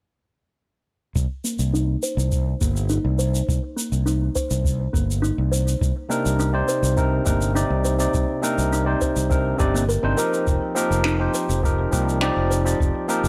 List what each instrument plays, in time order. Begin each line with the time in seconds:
1.15 fretless electric bass C2, kick, shaker
1.44 kalimba A#3, shaker
1.59 fretless electric bass C2, shaker
1.73 kalimba D#4, shaker
2.03 kalimba C5, shaker
2.17 fretless electric bass C2, shaker
2.32 kick, shaker
2.61 fretless electric bass G1, kalimba A#3, kick, shaker
2.76 shaker
2.89 kalimba D#4, shaker
3.04 fretless electric bass C2
3.19 kalimba C5, shaker
3.35 shaker
3.48 fretless electric bass C2, kick, shaker
3.76 kalimba A#3, shaker
3.92 fretless electric bass C2, shaker
4.06 kalimba D#4, shaker
4.35 kalimba C5, kick, shaker
4.51 fretless electric bass C2, shaker
4.65 kick, shaker
4.93 fretless electric bass G1, kalimba A#3, kick, shaker
5.11 shaker
5.22 kalimba D#4, shaker
5.38 fretless electric bass C2
5.52 kalimba C5, shaker
5.68 shaker
5.81 fretless electric bass C2, kick, shaker
6.09 tine electric piano C3 C4 D4 D#4 A#4, kalimba A#3, shaker
6.26 fretless electric bass C2, shaker
6.39 kalimba D#4, shaker
6.53 tine electric piano C3 C4 D#4 C5 D5
6.68 kalimba C5, shaker
6.83 fretless electric bass C2, shaker
6.96 tine electric piano C3 C4 D4 D#4 A#4, kick, shaker
7.25 fretless electric bass G1, tine electric piano C3 C4 D4 D#4 A#4, kalimba A#3, kick, shaker
7.42 shaker
7.54 tine electric piano C3 C4 D#4 D5, kalimba D#4, shaker
7.70 fretless electric bass C2
7.85 kalimba C5, shaker
7.98 tine electric piano C3 C4 D#4 D5, shaker
8.14 fretless electric bass C2, kick, shaker
8.42 tine electric piano C3 C4 D4 D#4 A#4, kalimba A#3, shaker
8.58 fretless electric bass C2, shaker
8.72 kalimba D#4, shaker
8.85 tine electric piano C3 C4 D#4 C5 D5
9.01 kalimba C5, kick, shaker
9.16 fretless electric bass C2, shaker
9.29 tine electric piano C3 C4 D4 D#4 A#4, kick, shaker
9.58 fretless electric bass G1, tine electric piano C3 C4 D4 D#4 D5, kalimba G4, kick, shaker
9.74 kalimba A#3, shaker
9.89 kalimba A#4, shaker
10.02 fretless electric bass G1, tine electric piano C3 C4 D4 D#4 C5, kalimba G4
10.17 tine electric piano F3 C4 D#4 G4 A#4, kalimba A#4, shaker
10.34 shaker
10.47 fretless electric bass F1, kick, shaker
10.75 tine electric piano F3 C4 D#4 G4 A#4, kalimba A#3, shaker
10.91 fretless electric bass F1, shaker
11.04 kalimba D#4, finger snap, shaker
11.19 tine electric piano F3 C4 D#4 G4 C5
11.35 kalimba C5, shaker
11.49 fretless electric bass F1, shaker
11.63 tine electric piano F3 C4 D#4 G4 A#4, kick, shaker
11.91 fretless electric bass C2, tine electric piano F3 C4 D#4 G4 A#4, kalimba A#3, kick, shaker
12.09 shaker
12.20 tine electric piano F3 C4 D#4 G4 D5, kalimba D#4, finger snap, shaker
12.37 fretless electric bass F1
12.51 kalimba C5, shaker
12.64 tine electric piano F3 C4 D#4 G4 D5, shaker
12.80 fretless electric bass F1, kick, shaker
13.08 tine electric piano F3 C4 D#4 G4 A#4, kalimba A#3, shaker
13.24 fretless electric bass F1, shaker